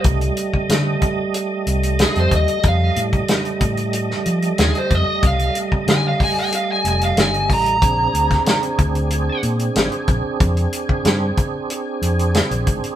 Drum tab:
HH |xxx-x-x-x-xxxxxx|x-xxxxxxx-xxxxx-|xxx-x-o-x-xxxxox|x-xxxxxxx-xxxxx-|
SD |----o-------o---|----o----o--o---|----o-------o---|---oo-------o---|
BD |o--o--o-------o-|o--o--o-------o-|o--o--o-------o-|o--o--o-------o-|

HH |xxx-x-x-x-xxxxxx|
SD |----o-------o---|
BD |o--o--o-------o-|